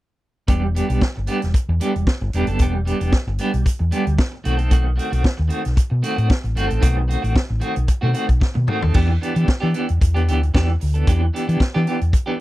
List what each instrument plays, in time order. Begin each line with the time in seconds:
0.48 fingered electric bass E1, clean electric guitar G3 B3 D4 G4, kick, closed hi-hat
0.63 muted clean electric guitar stroke
0.75 clean electric guitar G3 B3 D4 G4, closed hi-hat
0.90 fingered electric bass B1, clean electric guitar G3 B3 D4, closed hi-hat
1.01 muted clean electric guitar stroke, kick, snare
1.16 fingered electric bass G1, muted clean electric guitar stroke
1.27 clean electric guitar G3 B3 D4 G4, closed hi-hat
1.42 fingered electric bass E1, snare, closed hi-hat
1.54 muted clean electric guitar stroke, muted fingered electric bass stroke, kick, closed hi-hat
1.69 fingered electric bass E2, muted clean electric guitar stroke
1.80 clean electric guitar G3 B3 D4 G4, closed hi-hat
1.95 fingered electric bass E1, muted clean electric guitar stroke, closed hi-hat
2.07 muted clean electric guitar stroke, kick, snare
2.21 fingered electric bass G1, muted clean electric guitar stroke
2.33 fingered electric bass E1, clean electric guitar G3 B3 D4 G4, closed hi-hat
2.47 fingered electric bass F#1, clean electric guitar D4 A4, closed hi-hat
2.59 fingered electric bass E1, clean electric guitar G3 B3 D4 G4, kick, closed hi-hat
2.73 muted clean electric guitar stroke
2.86 clean electric guitar G3 B3 D4 G4, closed hi-hat
3.00 fingered electric bass E1, clean electric guitar G3 B3 D4 G4, closed hi-hat
3.12 muted clean electric guitar stroke, kick, snare
3.27 fingered electric bass G1, muted clean electric guitar stroke
3.38 clean electric guitar G3 B3 D4 G4, closed hi-hat
3.54 fingered electric bass B1, closed hi-hat
3.65 muted clean electric guitar stroke, muted fingered electric bass stroke, kick, closed hi-hat
3.79 fingered electric bass E2, muted clean electric guitar stroke
3.91 clean electric guitar G3 B3 D4 G4, closed hi-hat
4.07 fingered electric bass D2, closed hi-hat
4.18 muted clean electric guitar stroke, kick, snare
4.32 muted clean electric guitar stroke
4.44 fingered electric bass B1, clean electric guitar D#3 A3 C4 F#4, closed hi-hat
4.57 clean electric guitar C4 A4, closed hi-hat
4.70 clean electric guitar D#3 A3 C4 F#4, kick, closed hi-hat
4.84 muted clean electric guitar stroke
4.96 clean electric guitar D#3 A3 C4 F#4, closed hi-hat
5.11 fingered electric bass B1, clean electric guitar D#3 A3 C4 F#4, closed hi-hat
5.23 muted clean electric guitar stroke, kick, snare
5.37 fingered electric bass D#2, muted clean electric guitar stroke
5.48 clean electric guitar D#3 A3 C4 F#4, closed hi-hat
5.63 fingered electric bass B1, muted clean electric guitar stroke, snare, closed hi-hat
5.75 muted clean electric guitar stroke, muted fingered electric bass stroke, kick, closed hi-hat
5.90 fingered electric bass B2, muted clean electric guitar stroke
6.03 clean electric guitar D#3 A3 C4 F#4, closed hi-hat
6.16 fingered electric bass A2, clean electric guitar D#3 A3 C4 F#4, closed hi-hat
6.29 muted clean electric guitar stroke, kick, snare
6.43 fingered electric bass A1, muted clean electric guitar stroke, closed hi-hat
6.55 fingered electric bass G1, clean electric guitar D#3 A3 C4 F#4, closed hi-hat
6.68 fingered electric bass A1, clean electric guitar D#3 A3 C4 A4, closed hi-hat
6.81 fingered electric bass B1, clean electric guitar D#3 A3 C4 F#4, kick, closed hi-hat
6.97 muted clean electric guitar stroke
7.08 clean electric guitar D#3 A3 C4 F#4, closed hi-hat
7.22 fingered electric bass A1, clean electric guitar D#3 A3 C4 F#4, closed hi-hat
7.35 muted clean electric guitar stroke, kick, snare
7.48 fingered electric bass A1, muted clean electric guitar stroke
7.60 clean electric guitar D#3 A3 C4 F#4, closed hi-hat
7.76 fingered electric bass B1, muted clean electric guitar stroke, closed hi-hat
7.88 muted clean electric guitar stroke, muted fingered electric bass stroke, kick, closed hi-hat
8.01 fingered electric bass B2, clean electric guitar D#3 A3 C4 F#4
8.13 clean electric guitar D#3 A3 C4 F#4, closed hi-hat
8.27 fingered electric bass B1, muted clean electric guitar stroke, kick, closed hi-hat
8.40 muted clean electric guitar stroke, kick, snare
8.54 fingered electric bass B2, muted clean electric guitar stroke, high tom
8.67 clean electric guitar D#3 A3 C4 F#4, mid tom
8.82 fingered electric bass D#2, clean electric guitar D#3 C4, floor tom
8.94 fingered electric bass E2, clean electric guitar E3 B3 D4 G4, kick, crash
9.09 muted clean electric guitar stroke
9.22 clean electric guitar E3 B3 D4 G4, closed hi-hat
9.36 fingered electric bass E3, closed hi-hat
9.48 muted clean electric guitar stroke, muted fingered electric bass stroke, kick, snare
9.60 clean electric guitar E3 B3 D4 G4, fingered electric bass E3
9.74 clean electric guitar E3 B3 D4 G4, closed hi-hat
9.88 fingered electric bass E2, muted clean electric guitar stroke, closed hi-hat
10.01 fingered electric bass E2, muted clean electric guitar stroke, kick, closed hi-hat
10.14 clean electric guitar E3 B3 D4 G4, closed hi-hat
10.28 fingered electric bass D2, clean electric guitar E3 B3 D4 G4, closed hi-hat
10.43 closed hi-hat
10.54 fingered electric bass E2, clean electric guitar E3 B3 D4 G4, kick, snare
10.69 muted clean electric guitar stroke
10.80 fingered electric bass D2, muted clean electric guitar stroke, open hi-hat
10.94 clean electric guitar E3 B3 D4 A4, closed hi-hat
11.07 fingered electric bass E2, clean electric guitar E3 B3 D4 G4, kick, closed hi-hat
11.22 muted clean electric guitar stroke
11.33 clean electric guitar E3 B3 D4 G4, closed hi-hat
11.48 fingered electric bass E3, clean electric guitar E3 B3 D4 G4, closed hi-hat
11.60 muted clean electric guitar stroke, muted fingered electric bass stroke, kick, snare
11.74 clean electric guitar E3 B3 D4 G4, fingered electric bass E3
11.86 clean electric guitar E3 B3 D4 G4, closed hi-hat
12.01 fingered electric bass E2, closed hi-hat
12.13 muted clean electric guitar stroke, kick, closed hi-hat
12.26 clean electric guitar E3 B3 D4 G4